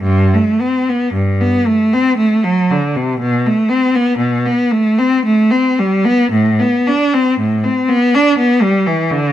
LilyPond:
\new Staff \with { instrumentName = "Cello" } { \time 3/4 \key g \major \tempo 4 = 58 g,16 a16 c'16 b16 g,16 b16 a16 c'16 a16 fis16 d16 c16 | b,16 a16 c'16 b16 b,16 b16 a16 c'16 a16 c'16 g16 b16 | a,16 b16 d'16 c'16 a,16 c'16 b16 d'16 b16 g16 e16 d16 | }